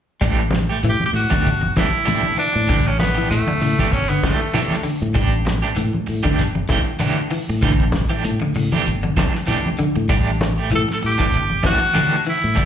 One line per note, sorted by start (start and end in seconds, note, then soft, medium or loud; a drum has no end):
0.21 0.69 A1 medium
0.21 0.41 E3 medium
0.21 0.39 G3 medium
0.21 0.42 A3 medium
0.21 0.42 D4 medium
0.21 0.42 G4 medium
0.21 kick medium
0.21 closed hi-hat medium
0.21 shekere medium
0.51 muted clean electric guitar stroke soft
0.51 snare medium
0.51 closed hi-hat soft
0.51 high conga medium
0.51 shekere soft
0.69 0.81 A3 soft
0.69 0.82 G4 soft
0.69 muted clean electric guitar stroke soft
0.69 closed hi-hat soft
0.83 0.96 A2 medium
0.83 1.02 E3 medium
0.83 muted clean electric guitar stroke soft
0.83 closed hi-hat medium
0.83 shekere medium
0.89 1.02 G4 medium
1.00 muted clean electric guitar stroke soft
1.00 high conga medium
1.05 1.10 G4 medium
1.13 1.27 A2 medium
1.13 1.73 F#4 medium
1.13 muted clean electric guitar stroke soft
1.13 open hi-hat medium
1.13 shekere soft
1.30 1.50 D3 medium
1.30 1.48 E3 soft
1.30 1.48 A3 medium
1.30 1.48 D4 medium
1.30 1.48 G4 medium
1.30 kick medium
1.30 closed hi-hat soft
1.30 high conga medium
1.45 1.68 G1 medium
1.45 closed hi-hat medium
1.45 shekere medium
1.61 muted clean electric guitar stroke soft
1.61 high conga medium
1.76 1.93 E3 medium
1.76 1.95 E3 medium
1.76 1.92 A3 medium
1.76 1.91 D4 medium
1.76 2.35 E4 medium
1.76 1.92 G4 medium
1.76 kick medium
1.76 snare medium
1.76 closed hi-hat soft
1.76 high conga medium
1.76 shekere soft
1.93 muted clean electric guitar stroke soft
2.05 2.25 A2 medium
2.05 2.26 A3 medium
2.05 2.26 D4 medium
2.05 2.26 G4 medium
2.05 closed hi-hat medium
2.05 high conga medium
2.05 shekere medium
2.23 high conga medium
2.37 2.56 E3 medium
2.37 2.88 D4 medium
2.37 muted clean electric guitar stroke soft
2.37 open hi-hat medium
2.37 shekere soft
2.53 2.72 A2 medium
2.53 muted clean electric guitar stroke soft
2.67 2.87 D3 medium
2.67 2.88 E3 medium
2.67 2.88 A3 medium
2.67 2.88 D4 medium
2.67 2.89 G4 medium
2.67 kick medium
2.67 closed hi-hat medium
2.67 shekere medium
2.71 3.17 A1 medium
2.87 2.99 C#4 medium
2.98 3.29 B3 medium
2.98 muted clean electric guitar stroke soft
2.98 closed hi-hat soft
2.98 high conga medium
2.98 shekere soft
3.02 snare medium
3.14 3.36 E3 medium
3.14 3.29 D4 soft
3.14 3.30 G4 soft
3.29 3.44 A2 medium
3.29 3.94 A3 medium
3.29 muted clean electric guitar stroke soft
3.29 closed hi-hat medium
3.29 shekere medium
3.47 3.56 D3 medium
3.47 muted clean electric guitar stroke soft
3.47 high conga medium
3.61 3.75 A2 medium
3.61 3.80 C#3 medium
3.61 muted clean electric guitar stroke soft
3.61 open hi-hat medium
3.61 shekere soft
3.79 3.97 E3 soft
3.79 3.97 A3 medium
3.79 3.97 D4 medium
3.79 3.97 G4 medium
3.79 kick medium
3.79 snare soft
3.79 high conga medium
3.91 4.15 G1 medium
3.91 4.10 C#4 medium
3.91 closed hi-hat medium
3.91 shekere medium
4.09 4.28 D3 medium
4.09 4.23 B3 medium
4.09 muted clean electric guitar stroke soft
4.23 4.41 E3 soft
4.23 4.41 A3 medium
4.23 4.83 A3 medium
4.23 4.41 D4 medium
4.23 4.40 G4 medium
4.23 kick medium
4.23 snare medium
4.23 closed hi-hat soft
4.23 high conga medium
4.23 shekere soft
4.42 muted clean electric guitar stroke soft
4.54 4.72 E3 medium
4.54 4.74 E3 medium
4.54 4.74 A3 medium
4.54 4.74 D4 medium
4.54 4.75 G4 medium
4.54 closed hi-hat medium
4.54 high conga medium
4.54 shekere medium
4.71 snare soft
4.71 closed hi-hat soft
4.71 high conga medium
4.83 5.02 D3 medium
4.83 muted clean electric guitar stroke soft
4.83 open hi-hat medium
4.83 shekere soft
5.02 5.18 A2 medium
5.02 muted clean electric guitar stroke soft
5.02 closed hi-hat soft
5.14 5.63 A1 medium
5.14 5.33 G3 medium
5.14 5.36 D4 medium
5.14 5.36 G4 medium
5.14 muted clean electric guitar stroke medium
5.14 kick medium
5.14 closed hi-hat medium
5.14 shekere medium
5.45 muted clean electric guitar stroke soft
5.45 snare medium
5.45 closed hi-hat soft
5.45 high conga medium
5.45 shekere soft
5.62 5.76 A3 soft
5.62 5.76 D4 medium
5.62 5.76 G4 medium
5.62 closed hi-hat soft
5.76 5.91 A2 medium
5.76 5.95 E3 medium
5.76 muted clean electric guitar stroke soft
5.76 closed hi-hat medium
5.76 shekere medium
5.93 muted clean electric guitar stroke soft
5.93 high conga medium
6.07 6.22 A2 medium
6.07 muted clean electric guitar stroke soft
6.07 open hi-hat medium
6.07 shekere soft
6.23 6.43 D3 medium
6.23 6.42 E3 medium
6.23 6.42 A3 medium
6.23 6.42 D4 medium
6.23 6.42 G4 medium
6.23 kick medium
6.23 closed hi-hat soft
6.23 high conga medium
6.38 6.62 G1 medium
6.38 snare soft
6.38 closed hi-hat medium
6.38 shekere medium
6.55 muted clean electric guitar stroke soft
6.55 high conga medium
6.69 6.88 E3 medium
6.69 6.87 E3 medium
6.69 6.86 A3 medium
6.69 6.86 D4 medium
6.69 6.86 G4 medium
6.69 kick medium
6.69 snare medium
6.69 closed hi-hat medium
6.69 high conga medium
6.69 shekere soft
6.87 muted clean electric guitar stroke soft
6.99 7.19 D3 medium
6.99 7.20 E3 medium
6.99 7.21 A3 medium
6.99 7.21 D4 medium
6.99 7.21 G4 medium
6.99 closed hi-hat medium
6.99 high conga medium
6.99 shekere medium
7.31 7.50 E3 medium
7.31 muted clean electric guitar stroke soft
7.31 open hi-hat medium
7.31 shekere soft
7.49 7.65 A2 medium
7.49 muted clean electric guitar stroke soft
7.62 8.10 A1 loud
7.62 7.81 D3 medium
7.62 7.83 E3 medium
7.62 7.83 A3 medium
7.62 7.83 D4 medium
7.62 7.83 G4 medium
7.62 kick medium
7.62 closed hi-hat medium
7.62 shekere medium
7.80 kick medium
7.92 muted clean electric guitar stroke soft
7.92 kick medium
7.92 snare medium
7.92 closed hi-hat soft
7.92 high conga medium
7.92 shekere soft
8.09 8.29 E3 medium
8.09 8.24 A3 soft
8.09 8.24 D4 soft
8.09 8.24 G4 medium
8.24 8.38 A2 medium
8.24 muted clean electric guitar stroke soft
8.24 closed hi-hat medium
8.24 shekere medium
8.40 8.50 D3 medium
8.40 muted clean electric guitar stroke soft
8.40 high conga medium
8.55 8.69 A2 medium
8.55 8.74 C#3 medium
8.55 muted clean electric guitar stroke soft
8.55 open hi-hat medium
8.55 shekere soft
8.72 8.90 E3 medium
8.72 8.90 A3 medium
8.72 8.90 D4 medium
8.72 8.90 G4 medium
8.72 closed hi-hat soft
8.72 high conga medium
8.86 9.10 G1 medium
8.86 closed hi-hat medium
8.86 shekere medium
9.03 9.22 D3 medium
9.03 muted clean electric guitar stroke soft
9.03 high conga medium
9.17 9.34 E3 medium
9.17 9.33 A3 medium
9.17 9.33 D4 medium
9.17 9.32 G4 medium
9.17 kick medium
9.17 snare medium
9.17 closed hi-hat soft
9.17 high conga medium
9.17 shekere soft
9.33 muted clean electric guitar stroke soft
9.33 snare soft
9.46 9.66 E3 medium
9.46 9.67 A3 medium
9.46 9.68 D4 loud
9.46 9.68 G4 medium
9.46 closed hi-hat medium
9.46 high conga medium
9.46 shekere medium
9.66 closed hi-hat soft
9.66 high conga medium
9.79 9.97 D3 medium
9.79 muted clean electric guitar stroke soft
9.79 closed hi-hat soft
9.79 high conga medium
9.79 shekere soft
9.95 10.12 A2 medium
9.95 muted clean electric guitar stroke soft
9.95 closed hi-hat soft
10.09 10.57 A1 medium
10.09 10.28 G3 medium
10.09 10.30 A3 medium
10.09 10.30 D4 medium
10.09 10.30 G4 medium
10.09 muted clean electric guitar stroke medium
10.09 kick medium
10.09 closed hi-hat medium
10.09 shekere medium
10.40 muted clean electric guitar stroke soft
10.40 snare medium
10.40 closed hi-hat soft
10.40 high conga medium
10.40 shekere soft
10.58 10.70 A3 soft
10.58 10.71 G4 soft
10.58 muted clean electric guitar stroke soft
10.58 closed hi-hat soft
10.70 10.86 A2 medium
10.70 10.90 E3 medium
10.70 muted clean electric guitar stroke soft
10.70 closed hi-hat medium
10.70 shekere medium
10.75 10.82 A4 loud
10.88 muted clean electric guitar stroke soft
10.88 snare soft
10.93 10.98 A4 medium
11.01 11.17 A2 medium
11.01 muted clean electric guitar stroke soft
11.01 open hi-hat medium
11.01 shekere soft
11.06 11.62 G4 loud
11.18 11.36 E3 soft
11.18 11.38 E3 medium
11.18 11.36 A3 medium
11.18 11.36 D4 medium
11.18 11.36 G4 medium
11.18 kick medium
11.18 closed hi-hat soft
11.18 high conga medium
11.32 closed hi-hat medium
11.32 shekere medium
11.36 11.58 G1 medium
11.50 muted clean electric guitar stroke soft
11.50 high conga medium
11.63 11.81 E3 medium
11.63 11.82 E3 medium
11.63 11.79 A3 medium
11.63 11.79 D4 medium
11.63 12.23 F#4 medium
11.63 11.79 G4 medium
11.63 kick medium
11.63 snare medium
11.63 closed hi-hat medium
11.63 high conga medium
11.63 shekere soft
11.80 muted clean electric guitar stroke soft
11.94 12.13 D3 medium
11.94 12.14 E3 medium
11.94 12.15 A3 medium
11.94 12.15 D4 medium
11.94 12.15 G4 medium
11.94 closed hi-hat medium
11.94 high conga medium
11.94 shekere medium
12.24 12.45 E3 medium
12.24 muted clean electric guitar stroke soft
12.24 open hi-hat medium
12.24 shekere soft
12.29 12.65 E4 medium
12.42 12.60 A2 medium
12.42 muted clean electric guitar stroke soft
12.55 12.65 A1 medium
12.55 12.65 D3 medium
12.55 12.65 E3 medium
12.55 12.65 A3 medium
12.55 12.65 D4 medium
12.55 12.65 G4 medium
12.55 kick medium
12.55 closed hi-hat medium
12.55 shekere medium